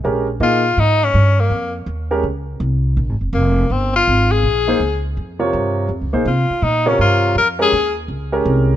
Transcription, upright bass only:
X:1
M:4/4
L:1/8
Q:"Swing" 1/4=164
K:Bbdor
V:1 name="Upright bass" clef=bass
B,,,2 B,,2 A,,2 G,,2 | F,,2 E,,2 D,,2 C,,2 | (3B,,, A,,, F,,, F,,,2 G,,,2 A,,,2 | B,,,2 D,,2 F,,2 G,,2 |
(3F,, D,, B,,, C, z B,,2 G,,2 | F,,2 E,,2 D,,2 C,,2 |]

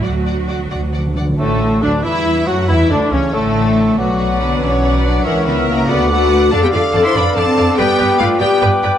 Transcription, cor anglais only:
X:1
M:6/8
L:1/8
Q:3/8=94
K:D
V:1 name="Cor anglais"
z6 | A,2 D E2 F | E D C A,3 | d6 |
c3 d3 | [K:Ddor] d6 | d3 d3 |]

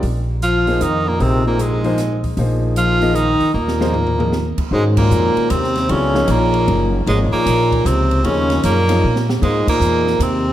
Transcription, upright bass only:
X:1
M:3/4
L:1/8
Q:"Swing" 1/4=153
K:Ablyd
V:1 name="Upright bass" clef=bass
B,,,4 F,,2 | B,,,6 | B,,,4- B,,, z | E,,4- E,, z |
[K:Abmix] A,,2 F,, z E,,2 | D,,2 B,,,2 G,,,2 | A,,, z B,,,2 D,,2 | E,,2 G,,2 B,,2 |
A,, z _F,,2 E,,2 |]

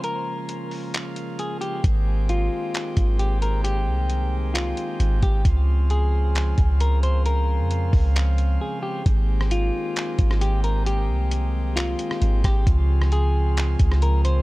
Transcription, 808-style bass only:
X:1
M:4/4
L:1/16
Q:1/4=133
K:Ab
V:1 name="808-style bass" clef=bass
z16 | A,,,6 z4 A,,,6- | A,,,2 C,,8 z2 A,,,2 A,,,2 | D,,8- D,,2 D,,6- |
D,,3 F,,3 D,,6 z4 | A,,,6 z4 A,,,6- | A,,,2 C,,8 z2 A,,,2 A,,,2 | D,,8- D,,2 D,,6 |]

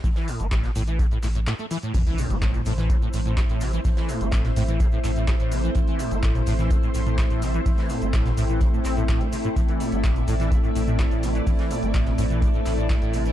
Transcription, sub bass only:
X:1
M:4/4
L:1/16
Q:1/4=126
K:Am
V:1 name="Sub bass" clef=bass
A,,, z2 G,,,2 z A,,,2 z2 A,,,2 z4 | A,,, z2 G,,,2 z A,,,2 z2 A,,,2 z A,,,2 z | A,,, z2 G,,,2 z A,,,2 z2 A,,,2 z A,,,2 z | A,,, z2 G,,,2 z A,,,2 z2 A,,,2 z A,,,2 z |
A,,, z2 G,,,2 z A,,,2 z2 A,,,2 z A,,, z2 | A,,, z2 G,,,2 z A,,,2 z2 A,,,2 z A,,,2 z | A,,, z2 G,,,2 z A,,,2 z2 A,,,2 z A,,,2 z |]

